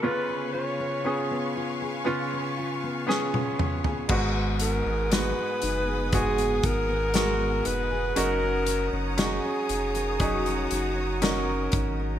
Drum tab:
CC |----------------|x---------------|----------------|
HH |----------------|--x-x-x-xxx-x-x-|x-x-x-xxxxx-x-x-|
SD |------------o---|----o-------o---|----o-------o---|
T1 |-------------o--|----------------|----------------|
T2 |--------------o-|----------------|----------------|
FT |---------------o|----------------|----------------|
BD |----------------|o-------o-o-----|--------o-----o-|